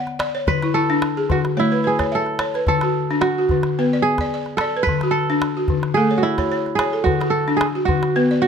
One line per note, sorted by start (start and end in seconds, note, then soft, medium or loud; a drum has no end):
0.00 0.35 F#5 medium
0.07 calabash click soft
0.19 0.47 D5 medium
0.19 calabash click medium
0.35 0.62 C#5 medium
0.47 0.75 D3 medium
0.47 1.71 B4 loud
0.47 calabash thump medium
0.62 0.74 E4 medium
0.62 calabash click soft
0.74 1.17 E4 medium
0.74 1.93 A4 loud
0.90 1.17 D4 medium
1.02 calabash click medium
1.17 1.57 G#4 medium
1.30 1.57 D3 medium
1.30 1.39 F#4 medium
1.30 calabash thump medium
1.30 calabash click soft
1.45 calabash click medium
1.57 1.85 A3 medium
1.57 3.16 E4 medium
1.57 1.98 C#5 medium
1.72 1.83 B4 medium
1.84 2.21 G#4 medium
1.84 2.26 B4 medium
1.99 2.27 C#5 medium
1.99 calabash thump soft
1.99 calabash click medium
2.12 2.68 A4 medium
2.12 2.54 E5 medium
2.26 calabash click soft
2.39 2.67 C#5 medium
2.39 calabash click medium
2.54 2.82 B4 medium
2.54 calabash click soft
2.67 2.95 D3 medium
2.67 4.00 A4 loud
2.67 calabash thump medium
2.81 3.22 F#4 medium
2.81 calabash click medium
3.11 3.37 D4 medium
3.21 4.67 F#4 medium
3.21 calabash click medium
3.38 3.78 F#4 medium
3.49 3.78 D3 medium
3.49 calabash thump medium
3.63 calabash click soft
3.79 4.05 B3 medium
3.79 4.20 B4 medium
3.93 4.19 D5 medium
4.02 4.63 G#4 loud
4.18 4.33 D5 medium
4.18 calabash thump soft
4.18 calabash click soft
4.34 4.60 D5 medium
4.46 calabash click soft
4.57 5.11 A4 medium
4.57 4.87 D5 medium
4.57 calabash click medium
4.77 5.02 B4 medium
4.83 6.06 B4 loud
4.83 calabash thump medium
4.89 5.15 D3 medium
5.01 5.42 F#4 medium
5.01 calabash click soft
5.11 6.00 A4 loud
5.30 5.56 D4 medium
5.42 calabash click medium
5.57 5.97 F#4 medium
5.68 5.97 D3 medium
5.68 calabash thump medium
5.83 calabash click soft
5.94 6.24 A3 medium
5.94 6.75 G#4 loud
5.94 6.39 A4 medium
6.11 6.37 C#5 medium
6.18 7.03 F#4 medium
6.23 7.80 E4 medium
6.38 6.50 C#5 medium
6.38 calabash thump medium
6.38 calabash click soft
6.52 6.79 C#5 medium
6.66 calabash click soft
6.75 7.36 G#4 medium
6.75 calabash click medium
6.80 7.07 C#5 medium
6.93 7.20 A4 medium
7.04 7.33 D3 medium
7.04 7.85 F#4 medium
7.04 calabash thump medium
7.21 7.61 F#4 medium
7.21 calabash click medium
7.30 7.63 A4 medium
7.48 7.75 D4 medium
7.57 7.65 G#4 loud
7.61 calabash click medium
7.75 8.15 F#4 medium
7.85 8.16 D3 medium
7.85 8.41 F#4 medium
7.85 calabash thump medium
8.03 calabash click medium
8.16 8.43 B3 medium
8.16 8.47 B4 medium
8.31 8.47 D5 medium
8.42 8.47 F#4 loud